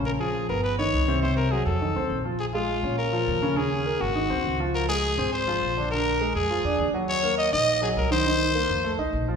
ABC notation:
X:1
M:4/4
L:1/8
Q:1/4=205
K:Bbm
V:1 name="Trumpet"
B A2 B =B d3 | c B A =A4 z | A F3 B4 | A3 G4 z |
B A3 c4 | B3 A4 z | d2 e e2 A B c- | c4- c z3 |]
V:2 name="Grand piano"
[D,D] [F,F]2 [_C_c]2 [^D,^D]2 [=C,=C] | [C,C]2 [G,G]2 [E,E] [Cc]2 [F,F] | z [A,A]2 [Dd]2 [F,F]2 [D,D] | [D,D]2 [B,B]2 [E,E] [Cc]2 [F,F]- |
[F,F] [A,A]2 [Cc]2 [F,F]2 [=D,=D] | [=D,=D]2 [A,A]2 [F,F] [D=d]2 [G,G]- | [G,G] [B,B]2 [Ee]2 [G,G]2 [E,E] | [E,E]2 [B,B]2 [=A,=A] [Ee]2 [F,F] |]
V:3 name="Upright bass" clef=bass
B,,,3 =G,,,3 C,,2- | C,,3 F,,2 C,, B,,,2- | B,,,3 B,,3 E,,2- | E,,3 A,,,2 C,, D,,2- |
D,,3 A,,,3 B,,,2- | B,,,3 F,,2 F,, E,,2- | E,,3 B,,,3 C,,2- | C,,3 F,,2 C,, B,,,2 |]